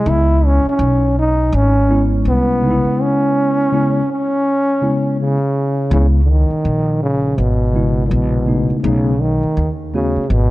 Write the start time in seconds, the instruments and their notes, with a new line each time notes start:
Already playing: trombone G#3
0.05 upright bass C#2, tine electric piano C#3 G#3 B3 E4, trombone E4
0.46 trombone C#4
0.65 muted upright bass stroke
0.69 trombone C#4
0.79 upright bass B1
1.19 trombone D#4
1.52 upright bass G#1, trombone C#4
1.89 tine electric piano G#3 B3 C#4 E4
2.25 upright bass C2, trombone B3
2.62 tine electric piano C#3 G#3 B3 D#4
2.71 tine electric piano E4
2.85 muted upright bass stroke
3.02 trombone C#4
3.72 tine electric piano C#3 G#3 B3 E4
4.12 trombone C#4
4.82 tine electric piano C#3 G#3 B3 E4
5.21 trombone C#3
5.91 upright bass C#2, tine electric piano C#3 G#3 B3 E4, trombone C#3
6.25 trombone D3
6.30 trombone D#3
6.50 muted upright bass stroke
6.65 upright bass A#1
7.03 trombone C#3
7.38 upright bass G#1, trombone B2
7.74 tine electric piano C#3 G#3 B3 E4
8.07 trombone A#2
8.11 upright bass A#1, trombone B2
8.46 tine electric piano C#3 A3 B3 D#4
8.70 muted upright bass stroke
8.80 trombone C3, tine electric piano C#3
8.84 upright bass B1, trombone C#3, tine electric piano A3 B3 D#4
9.21 trombone D#3
9.43 muted upright bass stroke
9.57 upright bass D#2
9.94 tine electric piano C#3 A3 B3 F#4, trombone C#3
10.16 muted upright bass stroke
10.30 upright bass G#1, trombone B2